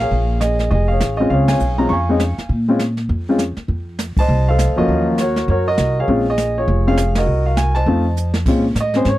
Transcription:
0.00 grand piano G#4 C#5 F5
0.11 upright bass A#1, brush sweep, kick
0.41 grand piano G#4 D#5, snare, hi-hat pedal
0.59 snare
0.71 upright bass F1, grand piano G#4 D#5, brush sweep, kick
0.88 grand piano G#4 F5
0.92 grand piano C#5
1.00 upright bass A1, snare, hi-hat pedal
1.17 grand piano G#3 C4 C#4 F4 D#5
1.30 upright bass C#2, grand piano G#4 C#5 F5, brush sweep, kick
1.48 grand piano C#5 F5 G#5, snare, ride
1.60 upright bass B1, hi-hat pedal
1.78 grand piano G#3 C4 C#4 F4 A#5
1.89 upright bass F2, grand piano F5 G#5 C#6, brush sweep, kick
2.09 grand piano G#3 C4 C#4 D#4
2.20 snare, hi-hat pedal
2.38 muted upright bass stroke, snare
2.49 upright bass A#2, brush sweep, kick
2.68 grand piano G#3 C4 C#4 F4
2.79 snare, hi-hat pedal
2.97 snare
3.09 upright bass F2, brush sweep, kick
3.29 grand piano G#3 C4 C#4 F4
3.39 snare, hi-hat pedal
3.57 muted upright bass stroke, snare
3.68 upright bass F2, brush sweep, kick
3.99 snare, hi-hat pedal
4.17 grand piano C5 D#5 A5, muted upright bass stroke, kick, ride
4.28 upright bass C2, brush sweep
4.48 grand piano A4 C5 F5
4.59 snare, hi-hat pedal
4.69 upright bass D#2
4.76 upright bass E2, grand piano F3 F#3 A#3 C#4 F#4 A#4 D#5
4.88 upright bass D#2, brush sweep, kick
5.18 grand piano F#4 A#4 C#5, snare, hi-hat pedal
5.36 snare
5.48 upright bass F#2, grand piano F#4 A#4 C#5, brush sweep, kick
5.68 grand piano F#4 A#4 D#5
5.78 upright bass C2, snare, hi-hat pedal
6.00 grand piano G#4 C#5 F5
6.08 upright bass A#1, grand piano G#3 C4 C#4 F4, brush sweep, kick
6.29 grand piano G#4 D#5
6.38 snare, hi-hat pedal
6.58 grand piano F4 G#4 C#5
6.68 upright bass F1, brush sweep, kick
6.87 grand piano G#3 C4 C#4 F4 G#4 C#5 F5
6.97 snare, hi-hat pedal
7.15 grand piano F#4 A#4 D#5, snare, ride
7.26 upright bass C2, brush sweep
7.46 grand piano F5
7.57 grand piano G#5, snare, hi-hat pedal
7.75 grand piano C5 D#5 A5, snare
7.86 upright bass F2, grand piano A3 C4 D#4 F4, brush sweep, kick
8.17 hi-hat pedal
8.34 snare
8.46 upright bass A#2, grand piano G#3 C4 C#4 F4, brush sweep, kick, snare, crash
8.75 upright bass A2, kick, snare, hi-hat pedal
8.81 grand piano D#5
8.94 grand piano G#3 C4 C#4 G#4 C5, snare
9.05 upright bass G#2, grand piano C#5, brush sweep, kick, snare

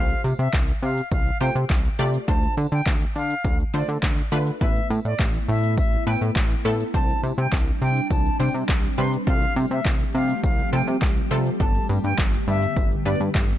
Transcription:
Already playing: analog synth bass C2, synth pluck A3 F4 G4 C5, flute F5
0.10 shaker
0.24 analog synth bass C3, open hi-hat, tambourine, shaker
0.39 analog synth bass C3, flute E5, shaker
0.53 analog synth bass C2, kick, clap, closed hi-hat, tambourine, shaker
0.68 shaker
0.82 analog synth bass C3, flute F5, open hi-hat, tambourine, shaker
0.97 shaker
1.12 analog synth bass C2, flute F5, kick, closed hi-hat, tambourine, shaker
1.26 shaker
1.41 analog synth bass C3, synth pluck A3 F4 G4 C5, flute G5, open hi-hat, tambourine, shaker
1.55 analog synth bass C3, shaker
1.70 analog synth bass C2, kick, clap, closed hi-hat, tambourine, shaker
1.85 shaker
1.99 analog synth bass C3, synth pluck A3 F4 G4 D5, open hi-hat, tambourine, shaker
2.14 shaker
2.28 analog synth bass D2, synth pluck A3 D4 F4 C5, flute A5, kick, closed hi-hat, tambourine, shaker
2.43 shaker
2.57 analog synth bass D3, open hi-hat, tambourine, shaker
2.72 analog synth bass D3, flute G5, shaker
2.86 analog synth bass D2, kick, clap, closed hi-hat, tambourine, shaker
3.01 shaker
3.15 analog synth bass D3, flute F5, open hi-hat, tambourine, shaker
3.30 shaker
3.45 analog synth bass D2, kick, closed hi-hat, tambourine, shaker
3.59 shaker
3.74 analog synth bass D3, synth pluck A3 D4 F4 C5, flute D5, open hi-hat, tambourine, shaker
3.88 analog synth bass D3, shaker
4.03 analog synth bass D2, kick, clap, closed hi-hat, tambourine, shaker
4.18 shaker
4.32 analog synth bass D3, synth pluck A3 D4 F4 B4, open hi-hat, tambourine, shaker
4.47 shaker
4.61 analog synth bass A1, synth pluck A3 B3 E4 B4, ambient pad A3 B3 E4, flute E5, kick, closed hi-hat, tambourine, shaker
4.76 shaker
4.90 analog synth bass A2, open hi-hat, tambourine, shaker
5.05 analog synth bass A2, flute D5, shaker
5.19 analog synth bass A1, kick, clap, closed hi-hat, tambourine, shaker
5.34 shaker
5.49 analog synth bass A2, flute E5, open hi-hat, tambourine, shaker
5.63 shaker
5.78 analog synth bass A1, flute E5, kick, closed hi-hat, tambourine, shaker
5.93 shaker
6.07 analog synth bass A2, synth pluck A3 B3 E4 B4, flute G5, open hi-hat, tambourine, shaker
6.21 analog synth bass A2, shaker
6.36 analog synth bass A1, kick, clap, closed hi-hat, tambourine, shaker
6.51 shaker
6.65 analog synth bass A2, synth pluck A3 B3 E4 A4, open hi-hat, tambourine, shaker
6.80 shaker
6.94 analog synth bass C2, synth pluck G3 C4 D4 C5, ambient pad G3 C4 D4, flute A5, kick, closed hi-hat, tambourine, shaker
7.09 shaker
7.23 analog synth bass C3, open hi-hat, tambourine, shaker
7.38 analog synth bass C3, flute G5, shaker
7.52 analog synth bass C2, kick, clap, closed hi-hat, tambourine, shaker
7.67 shaker
7.82 analog synth bass C3, flute G5, open hi-hat, tambourine, shaker
7.96 shaker
8.11 analog synth bass C2, flute A5, kick, closed hi-hat, tambourine, shaker
8.25 shaker
8.39 analog synth bass C3, synth pluck G3 C4 D4 C5, flute G5, open hi-hat, tambourine, shaker
8.54 analog synth bass C3, shaker
8.69 analog synth bass C2, kick, clap, closed hi-hat, tambourine, shaker
8.84 shaker
8.98 analog synth bass C3, synth pluck G3 C4 D4 B4, flute C6, open hi-hat, tambourine, shaker
9.13 shaker
9.27 analog synth bass C2, ambient pad F3 A3 G4, synth pluck G3 C4 F4 A4, flute F5, kick, closed hi-hat, shaker
9.42 shaker
9.56 analog synth bass C3, open hi-hat, tambourine, shaker
9.71 analog synth bass C3, flute E5, shaker
9.85 analog synth bass C2, kick, clap, closed hi-hat, tambourine, shaker
10.00 shaker
10.15 analog synth bass C3, flute F5, open hi-hat, tambourine, shaker
10.29 shaker
10.44 analog synth bass C2, flute F5, kick, closed hi-hat, tambourine, shaker
10.58 shaker
10.73 analog synth bass C3, synth pluck G3 C4 F4 A4, flute G5, open hi-hat, tambourine, shaker
10.87 analog synth bass C3, shaker
11.02 analog synth bass C2, kick, clap, closed hi-hat, tambourine, shaker
11.17 shaker
11.31 analog synth bass C3, synth pluck G3 C4 F4 A4, open hi-hat, tambourine, shaker
11.46 shaker
11.60 analog synth bass G1, ambient pad D3 A3 B3, synth pluck G3 B3 D4 A4, flute A5, kick, closed hi-hat, tambourine, shaker
11.75 shaker
11.89 analog synth bass G2, open hi-hat, tambourine, shaker
12.04 analog synth bass G2, flute G5, shaker
12.18 analog synth bass G1, kick, clap, closed hi-hat, tambourine, shaker
12.33 shaker
12.48 analog synth bass G2, flute E5, open hi-hat, shaker
12.62 shaker
12.77 analog synth bass G1, kick, closed hi-hat, tambourine, shaker
12.91 shaker
13.06 analog synth bass G2, synth pluck G3 B3 D4 B4, flute D5, open hi-hat, tambourine, shaker
13.20 analog synth bass G2, shaker
13.35 analog synth bass G1, kick, clap, closed hi-hat, tambourine, shaker
13.50 shaker

